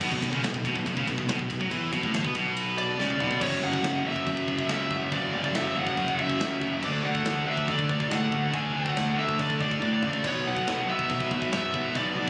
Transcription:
0.01 fingered electric bass B1, distorted electric guitar B2, kick, crash
0.12 fingered electric bass B1, distorted electric guitar B2, kick
0.22 fingered electric bass B1, distorted electric guitar B2, kick, ride
0.33 fingered electric bass C#2, distorted electric guitar C#3, kick
0.44 fingered electric bass B1, distorted electric guitar B2, snare, ride
0.54 fingered electric bass B1, distorted electric guitar B2, kick
0.65 fingered electric bass B1, distorted electric guitar B2, kick, ride
0.76 fingered electric bass B1, distorted electric guitar B2, kick
0.86 fingered electric bass B1, distorted electric guitar B2, kick, ride
0.97 fingered electric bass C#2, distorted electric guitar C#3, kick
1.07 fingered electric bass B1, distorted electric guitar B2, kick, ride
1.18 fingered electric bass B1, distorted electric guitar B2, kick
1.28 fingered electric bass B1, distorted electric guitar B2, snare, ride
1.39 fingered electric bass B1, distorted electric guitar B2, kick
1.50 fingered electric bass B1, distorted electric guitar B2, kick, ride
1.61 fingered electric bass F#2, distorted electric guitar F#3, kick
1.71 fingered electric bass E2, distorted electric guitar E3, kick, ride
1.93 fingered electric bass B1, distorted electric guitar B2, kick, ride
2.03 fingered electric bass A1, distorted electric guitar A2, kick
2.14 fingered electric bass D2, distorted electric guitar D3, snare, ride
2.24 fingered electric bass B2, distorted electric guitar B3, kick
2.35 fingered electric bass B1, distorted electric guitar B2, kick, ride
2.57 ride
2.78 lead electric guitar D5, ride
2.99 fingered electric bass C#2, distorted electric guitar C#3, snare
3.10 high tom
3.20 fingered electric bass B1, distorted electric guitar B2, mid tom
3.31 floor tom
3.41 fingered electric bass F#1, distorted electric guitar F#2 C#3 F#3, lead electric guitar C#5, kick, crash, china
3.63 fingered electric bass F#1, distorted electric guitar F#2 C#3 F#3, lead electric guitar F#5
3.73 kick
3.83 fingered electric bass F#1, distorted electric guitar F#2 C#3 F#3, snare, china
4.06 fingered electric bass F#1, distorted electric guitar F#2 C#3 F#3, lead electric guitar E5
4.16 kick
4.27 fingered electric bass F#2, distorted electric guitar F#2 C#3 F#3, kick, china
4.37 kick
4.48 fingered electric bass F#1, distorted electric guitar F#2 C#3 F#3, kick
4.59 kick
4.69 fingered electric bass C#2, distorted electric guitar F#2 C#3 F#3, lead electric guitar E5, snare, china
4.91 fingered electric bass F#1, distorted electric guitar F#2 C#3 F#3, kick
5.12 fingered electric bass F#1, distorted electric guitar F#2 C#3 F#3, lead electric guitar D5, kick, china
5.33 fingered electric bass F#1, distorted electric guitar F#2 C#3 F#3
5.44 kick
5.54 fingered electric bass F#1, distorted electric guitar F#2 C#3 F#3, lead electric guitar E5, snare, china
5.76 fingered electric bass F#1, distorted electric guitar F#2 C#3 F#3, lead electric guitar F#5
5.87 kick
5.97 fingered electric bass F#2, distorted electric guitar F#2 C#3 F#3, kick, china
6.08 kick
6.19 fingered electric bass F#1, distorted electric guitar F#2 C#3 F#3, lead electric guitar E5, kick
6.30 kick
6.40 fingered electric bass C#2, distorted electric guitar F#2 C#3 F#3, snare, china
6.61 fingered electric bass F#1, distorted electric guitar F#2 C#3 F#3, kick
6.82 fingered electric bass D2, distorted electric guitar D3 A3 D4, lead electric guitar D5, kick, china, crash
7.03 fingered electric bass D2, distorted electric guitar D3 A3 D4, lead electric guitar F#5
7.15 kick
7.25 fingered electric bass D2, distorted electric guitar D3 A3 D4, snare, china
7.47 fingered electric bass D2, distorted electric guitar D3 A3 D4, lead electric guitar E5
7.57 kick
7.68 distorted electric guitar D3 A3 D4, fingered electric bass D3, lead electric guitar D5, kick, china
7.79 kick
7.89 fingered electric bass D2, distorted electric guitar D3 A3 D4, kick
8.00 kick
8.10 fingered electric bass A2, distorted electric guitar D3 A3 D4, lead electric guitar F#5, snare, china
8.32 fingered electric bass D2, distorted electric guitar D3 A3 D4, kick
8.54 fingered electric bass D2, distorted electric guitar D3 A3 D4, lead electric guitar G#5, kick, china
8.75 fingered electric bass D2, distorted electric guitar D3 A3 D4, lead electric guitar F#5
8.86 kick
8.96 fingered electric bass D2, distorted electric guitar D3 A3 D4, snare, china
9.18 fingered electric bass D2, distorted electric guitar D3 A3 D4, lead electric guitar E5
9.29 kick
9.39 distorted electric guitar D3 A3 D4, fingered electric bass D3, lead electric guitar D5, kick, china
9.50 kick
9.60 fingered electric bass D2, distorted electric guitar D3 A3 D4, lead electric guitar D5, kick
9.71 kick
9.82 fingered electric bass A2, distorted electric guitar D3 A3 D4, kick
10.03 fingered electric bass C#2, distorted electric guitar D3 A3 D4, mid tom
10.13 floor tom
10.24 fingered electric bass B1, distorted electric guitar B2 F#3 B3, lead electric guitar C#5, kick, china, crash
10.46 fingered electric bass B1, distorted electric guitar B2 F#3 B3, lead electric guitar F#5
10.57 kick
10.67 fingered electric bass B1, distorted electric guitar B2 F#3 B3, snare, china
10.89 fingered electric bass B1, distorted electric guitar B2 F#3 B3, lead electric guitar E5
10.99 kick
11.10 fingered electric bass B2, distorted electric guitar B2 F#3 B3, kick, china
11.20 kick
11.31 fingered electric bass B1, distorted electric guitar B2 F#3 B3, kick
11.42 kick
11.52 fingered electric bass F#2, distorted electric guitar B2 F#3 B3, lead electric guitar E5, snare, china
11.74 fingered electric bass B1, distorted electric guitar B2 F#3 B3, kick
11.94 fingered electric bass B1, distorted electric guitar B2 F#3 B3, lead electric guitar D5, kick, china
12.15 fingered electric bass B1, distorted electric guitar B2 F#3 B3

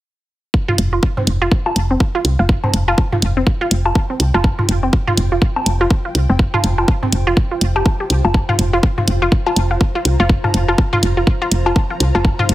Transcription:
0.54 ambient pad F4, kick
0.68 synth pluck F4, mid tom
0.78 fm bass F1, ambient pad G5, closed hi-hat
0.93 synth pluck F4
1.03 ambient pad C5, kick
1.17 synth pluck C4, mid tom
1.27 fm bass F1, closed hi-hat
1.42 synth pluck F4
1.52 kick
1.66 synth pluck F4, low woodblock
1.76 fm bass F1, closed hi-hat
1.91 synth pluck C4
2.00 kick
2.15 synth pluck F4
2.25 fm bass C2, closed hi-hat
2.39 fm bass F1, synth pluck F4
2.49 kick
2.64 synth pluck C4, mid tom, low woodblock
2.73 fm bass F1, closed hi-hat
2.88 synth pluck F4, low woodblock
2.98 kick
3.12 synth pluck F4, mid tom
3.22 fm bass F1, closed hi-hat
3.37 synth pluck C4
3.47 kick
3.61 synth pluck F4
3.71 fm bass F1, closed hi-hat
3.85 synth pluck F4, low woodblock
3.95 kick
4.10 synth pluck C4
4.20 fm bass C2, closed hi-hat
4.34 fm bass F1, synth pluck F4, low woodblock
4.44 kick
4.59 synth pluck F4, mid tom
4.69 fm bass F1, closed hi-hat
4.83 synth pluck C4
4.93 kick
5.07 synth pluck F4, mid tom
5.17 fm bass F1, closed hi-hat
5.32 synth pluck F4
5.42 kick
5.56 synth pluck C4, low woodblock
5.66 fm bass F1, closed hi-hat
5.81 synth pluck F4
5.90 kick
6.05 synth pluck F4
6.15 fm bass C2, closed hi-hat
6.29 fm bass F1, synth pluck C4
6.39 kick
6.54 synth pluck F4, mid tom, low woodblock
6.64 fm bass F1, closed hi-hat
6.78 synth pluck F4, low woodblock
6.88 kick
7.03 synth pluck C4, mid tom
7.12 fm bass F1, closed hi-hat
7.27 synth pluck F4
7.37 kick
7.51 synth pluck F4
7.61 fm bass F1, closed hi-hat
7.76 synth pluck G4, low woodblock
7.86 kick
8.00 synth pluck G4
8.10 fm bass C2, closed hi-hat
8.24 fm bass F1, synth pluck F4, low woodblock
8.34 kick
8.49 synth pluck F4, mid tom
8.59 fm bass F1, ambient pad A#5, closed hi-hat
8.73 synth pluck F4
8.83 kick
8.98 synth pluck F4, mid tom
9.08 fm bass F1, closed hi-hat
9.22 synth pluck F4
9.32 kick
9.46 synth pluck F4, low woodblock
9.56 fm bass F1, closed hi-hat
9.71 synth pluck F4
9.81 kick
9.95 synth pluck F4
10.05 fm bass C2, closed hi-hat
10.20 fm bass F1, synth pluck F4
10.29 kick
10.44 synth pluck F4, mid tom, low woodblock
10.54 fm bass F1, closed hi-hat
10.68 synth pluck F4, low woodblock
10.78 kick
10.93 synth pluck F4, mid tom
11.03 fm bass F1, closed hi-hat
11.17 synth pluck F4
11.27 kick
11.42 synth pluck F4
11.51 fm bass F1, closed hi-hat
11.66 synth pluck F4, low woodblock
11.76 kick
11.90 synth pluck F4
12.00 fm bass C2, closed hi-hat
12.15 fm bass F1, synth pluck F4, low woodblock
12.25 kick
12.39 synth pluck F4, mid tom
12.49 fm bass F1, closed hi-hat

